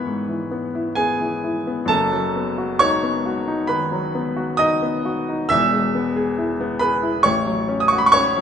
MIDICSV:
0, 0, Header, 1, 2, 480
1, 0, Start_track
1, 0, Key_signature, 4, "major"
1, 0, Tempo, 909091
1, 998, Time_signature, 4, 2, 24, 8
1, 2912, Tempo, 879765
1, 4492, End_track
2, 0, Start_track
2, 0, Title_t, "Grand piano"
2, 0, Program_c, 0, 0
2, 0, Control_c, 0, 64, 127
2, 0, Note_on_c, 0, 32, 56
2, 0, Note_on_c, 0, 44, 66
2, 0, Note_on_c, 0, 52, 53
2, 0, Note_on_c, 0, 59, 54
2, 0, Note_on_c, 0, 64, 47
2, 0, Note_on_c, 0, 71, 61
2, 0, Note_on_c, 0, 73, 74
2, 0, Note_on_c, 0, 83, 79
2, 0, Note_on_c, 0, 85, 99
2, 35, Note_off_c, 0, 44, 0
2, 35, Note_on_c, 0, 44, 52
2, 104, Note_off_c, 0, 59, 0
2, 151, Note_off_c, 0, 52, 0
2, 151, Note_on_c, 0, 52, 48
2, 248, Note_off_c, 0, 71, 0
2, 267, Note_off_c, 0, 83, 0
2, 271, Note_on_c, 0, 59, 51
2, 342, Note_off_c, 0, 52, 0
2, 396, Note_off_c, 0, 64, 0
2, 396, Note_on_c, 0, 64, 48
2, 463, Note_off_c, 0, 59, 0
2, 504, Note_on_c, 0, 80, 94
2, 509, Note_on_c, 0, 68, 67
2, 513, Note_on_c, 0, 59, 56
2, 587, Note_off_c, 0, 64, 0
2, 636, Note_on_c, 0, 52, 52
2, 706, Note_off_c, 0, 59, 0
2, 761, Note_on_c, 0, 64, 48
2, 829, Note_off_c, 0, 52, 0
2, 883, Note_on_c, 0, 59, 53
2, 953, Note_off_c, 0, 64, 0
2, 976, Note_off_c, 0, 68, 0
2, 979, Note_off_c, 0, 44, 0
2, 980, Note_on_c, 0, 42, 66
2, 991, Note_on_c, 0, 81, 101
2, 995, Note_off_c, 0, 80, 0
2, 997, Note_on_c, 0, 30, 66
2, 998, Note_on_c, 0, 69, 76
2, 1001, Note_off_c, 0, 59, 0
2, 1007, Control_c, 0, 64, 0
2, 1008, Note_off_c, 0, 73, 0
2, 1011, Note_off_c, 0, 85, 0
2, 1012, Note_off_c, 0, 32, 0
2, 1102, Control_c, 0, 64, 127
2, 1126, Note_on_c, 0, 54, 54
2, 1247, Note_on_c, 0, 59, 48
2, 1314, Note_off_c, 0, 54, 0
2, 1362, Note_on_c, 0, 66, 53
2, 1433, Note_off_c, 0, 59, 0
2, 1455, Note_off_c, 0, 69, 0
2, 1473, Note_off_c, 0, 81, 0
2, 1475, Note_on_c, 0, 85, 112
2, 1480, Note_on_c, 0, 73, 89
2, 1483, Note_on_c, 0, 63, 61
2, 1550, Note_off_c, 0, 66, 0
2, 1601, Note_on_c, 0, 59, 50
2, 1669, Note_off_c, 0, 63, 0
2, 1721, Note_on_c, 0, 66, 52
2, 1787, Note_off_c, 0, 59, 0
2, 1836, Note_on_c, 0, 63, 56
2, 1907, Note_off_c, 0, 66, 0
2, 1920, Note_off_c, 0, 42, 0
2, 1929, Note_off_c, 0, 30, 0
2, 1931, Note_off_c, 0, 73, 0
2, 1940, Note_on_c, 0, 83, 84
2, 1947, Note_on_c, 0, 71, 64
2, 1950, Note_off_c, 0, 85, 0
2, 1951, Note_on_c, 0, 51, 51
2, 2024, Note_off_c, 0, 63, 0
2, 2069, Note_on_c, 0, 54, 56
2, 2142, Note_off_c, 0, 51, 0
2, 2191, Note_on_c, 0, 59, 57
2, 2262, Note_off_c, 0, 54, 0
2, 2305, Note_on_c, 0, 66, 58
2, 2383, Note_off_c, 0, 59, 0
2, 2408, Note_off_c, 0, 71, 0
2, 2414, Note_on_c, 0, 87, 112
2, 2423, Note_on_c, 0, 75, 86
2, 2425, Note_off_c, 0, 83, 0
2, 2425, Note_on_c, 0, 63, 63
2, 2500, Note_off_c, 0, 66, 0
2, 2546, Note_on_c, 0, 59, 54
2, 2621, Note_off_c, 0, 63, 0
2, 2668, Note_on_c, 0, 66, 52
2, 2741, Note_off_c, 0, 59, 0
2, 2791, Note_on_c, 0, 63, 56
2, 2862, Note_off_c, 0, 66, 0
2, 2886, Note_off_c, 0, 75, 0
2, 2897, Note_on_c, 0, 88, 115
2, 2902, Note_on_c, 0, 28, 70
2, 2903, Note_off_c, 0, 87, 0
2, 2903, Note_on_c, 0, 76, 95
2, 2909, Note_on_c, 0, 40, 73
2, 2911, Note_off_c, 0, 63, 0
2, 2920, Control_c, 0, 64, 0
2, 3017, Control_c, 0, 64, 127
2, 3026, Note_on_c, 0, 56, 54
2, 3149, Note_on_c, 0, 59, 59
2, 3221, Note_off_c, 0, 56, 0
2, 3266, Note_on_c, 0, 68, 61
2, 3342, Note_off_c, 0, 59, 0
2, 3384, Note_on_c, 0, 64, 58
2, 3459, Note_off_c, 0, 68, 0
2, 3507, Note_on_c, 0, 59, 60
2, 3578, Note_off_c, 0, 64, 0
2, 3603, Note_off_c, 0, 76, 0
2, 3610, Note_on_c, 0, 83, 97
2, 3618, Note_on_c, 0, 71, 79
2, 3621, Note_off_c, 0, 88, 0
2, 3622, Note_on_c, 0, 68, 60
2, 3698, Note_off_c, 0, 59, 0
2, 3737, Note_on_c, 0, 64, 60
2, 3815, Note_off_c, 0, 68, 0
2, 3839, Note_off_c, 0, 28, 0
2, 3843, Note_off_c, 0, 40, 0
2, 3843, Note_off_c, 0, 71, 0
2, 3848, Note_on_c, 0, 85, 103
2, 3853, Note_on_c, 0, 73, 75
2, 3856, Note_off_c, 0, 83, 0
2, 3859, Note_on_c, 0, 33, 67
2, 3861, Note_off_c, 0, 64, 0
2, 3874, Control_c, 0, 64, 0
2, 3945, Control_c, 0, 64, 127
2, 3976, Note_on_c, 0, 54, 53
2, 4095, Note_on_c, 0, 61, 63
2, 4138, Note_off_c, 0, 73, 0
2, 4156, Note_off_c, 0, 85, 0
2, 4160, Note_on_c, 0, 87, 96
2, 4174, Note_off_c, 0, 54, 0
2, 4203, Note_on_c, 0, 85, 89
2, 4209, Note_off_c, 0, 87, 0
2, 4226, Note_on_c, 0, 66, 59
2, 4253, Note_off_c, 0, 85, 0
2, 4259, Note_on_c, 0, 83, 94
2, 4295, Note_off_c, 0, 61, 0
2, 4302, Note_on_c, 0, 85, 91
2, 4304, Note_off_c, 0, 83, 0
2, 4324, Note_off_c, 0, 85, 0
2, 4332, Note_on_c, 0, 85, 118
2, 4342, Note_on_c, 0, 73, 86
2, 4345, Note_on_c, 0, 61, 61
2, 4422, Note_off_c, 0, 66, 0
2, 4471, Note_on_c, 0, 54, 62
2, 4492, Note_off_c, 0, 33, 0
2, 4492, Note_off_c, 0, 54, 0
2, 4492, Note_off_c, 0, 61, 0
2, 4492, Note_off_c, 0, 73, 0
2, 4492, Note_off_c, 0, 85, 0
2, 4492, End_track
0, 0, End_of_file